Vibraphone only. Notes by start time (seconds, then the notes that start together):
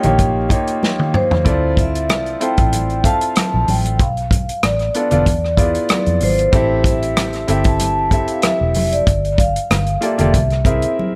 Already playing: G5
1.15 C5
1.79 E5
2.43 G5
3.06 A5
3.70 G5
4.01 F5
4.64 D5
4.96 D5
6.23 C5
6.87 E5
7.51 G5
7.68 A5
8.30 F5
8.45 E5
8.92 D5
9.40 F5
10.03 E5